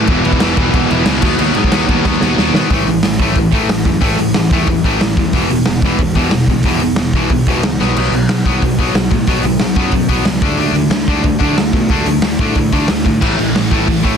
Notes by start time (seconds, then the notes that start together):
0.07 E1 E2 B2 E3, kick, crash
0.24 E1 E2 B2 E3, crash
0.33 kick
0.40 E1 E2 B2 E3, snare, crash
0.57 E1 E2 B2 E3, kick, crash
0.73 E1 E2 B2 E3, kick, crash
0.90 E1 E2 B2 E3, crash
1.05 C#2 E2 B2 E3, snare, crash
1.21 D#2 B2 F#3 B3, kick, crash
1.39 D#2 B2 F#3 B3, crash
1.55 G#2 B2 F#3 B3, crash
1.64 kick
1.72 D#2 B2 F#3 B3, snare, crash
1.88 D#2 B2 F#3 B3, kick, crash
2.04 D#2 B2 F#3 B3, kick, snare
2.21 D#2 B2 F#3 B3, snare
2.37 D#2 B2 F#3 B3, snare
2.54 B2 D#3 F#3 B3, snare
2.70 A1 A2 E3 A3, kick, open hi-hat
2.86 A1 A2 E3, open hi-hat
3.03 A1 A2 E3, snare, open hi-hat
3.19 A1 A2 E3 A3, kick, open hi-hat
3.35 A1 A2 E3, kick, open hi-hat
3.52 A2 E3 A3, kick, open hi-hat
3.69 A1 A2 E3, snare, open hi-hat
3.85 F#2 A2 E3, kick, open hi-hat
4.01 A1 A2 E3 A3, kick, open hi-hat
4.19 A1 A2 E3, open hi-hat
4.34 A1 A2 E3, snare, open hi-hat
4.51 E2 A2 E3 A3, kick, open hi-hat
4.67 E2 A2 E3, kick, open hi-hat
4.84 A1 A2 E3 A3, kick, open hi-hat
5.01 A1 A2 E3, snare, open hi-hat
5.17 E2 A2 E3, kick, open hi-hat
5.33 E1 E2 B2 E3, kick, open hi-hat
5.49 E1 E2 B2, open hi-hat
5.65 E1 E2 B2, snare, open hi-hat
5.82 E1 E2 B2 E3, kick, open hi-hat
5.98 E1 E2 B2, kick, open hi-hat
6.15 E2 B2 E3, kick, open hi-hat
6.31 E1 E2 B2, snare, open hi-hat
6.47 C#2 E2 B2, kick, open hi-hat
6.63 E1 E2 B2, kick, open hi-hat
6.67 E3
6.80 E1 E2 B2, open hi-hat
6.96 E1 E2 B2, snare, open hi-hat
7.13 B1 E2 B2 E3, kick, open hi-hat
7.30 B1 E2 B2, kick, open hi-hat
7.46 E1 E2 B2 E3, kick, open hi-hat
7.63 C#2 E2 B2, snare, open hi-hat
7.80 B1 B2 F#3 B3, snare
7.96 B1 B2 F#3 B3, crash
8.11 B1 B2, open hi-hat
8.15 F#3
8.28 B1 B2 F#3, snare, open hi-hat
8.45 B1 B2 F#3 B3, kick, open hi-hat
8.62 B1 B2 F#3, kick, open hi-hat
8.79 B2 F#3 B3, kick, open hi-hat
8.94 B1 B2 F#3, snare, open hi-hat
9.11 A2 B2 F#3, kick, open hi-hat
9.27 B1 B2 F#3 B3, kick, open hi-hat
9.43 B1 B2 F#3, open hi-hat
9.59 B1 B2 F#3, snare, open hi-hat
9.75 F#2 B2 F#3 B3, kick, open hi-hat
9.91 F#2 B2 F#3, kick, open hi-hat
10.09 B1 B2 F#3 B3, kick, open hi-hat
10.25 C#2 B2 F#3, snare, open hi-hat
10.41 D2 D3 A3 D4, kick, open hi-hat
10.58 D2 D3 A3 D4, open hi-hat
10.73 D2 D3 A3, open hi-hat
10.90 D2 D3 A3, snare, open hi-hat
11.08 D2 D3 A3 D4, kick, open hi-hat
11.24 D2 D3 A3, kick, open hi-hat
11.39 D3 A3 D4, kick
11.44 D4
11.56 D2 D3 A3, snare, open hi-hat
11.73 B2 D3 A3, kick, open hi-hat
11.88 D2 D3 A3 D4, kick, open hi-hat
12.06 D2 D3 A3, open hi-hat
12.22 D2 D3 A3, snare, open hi-hat
12.39 A2 D3 A3 D4, kick, open hi-hat
12.55 A2 D3 A3, kick, open hi-hat
12.72 D2 D3 A3 D4, kick, open hi-hat
12.88 D2 D3 A3, snare, open hi-hat
13.05 A2 D3 A3, kick, open hi-hat
13.21 A1 A2 E3 A3, kick, crash
13.37 A1 A2 E3, open hi-hat
13.55 A1 A2 E3, snare, open hi-hat
13.71 A1 A2 E3 A3, kick, open hi-hat
13.75 A2
13.87 A1 A2 E3, kick, open hi-hat
14.03 A2 E3 A3, kick, open hi-hat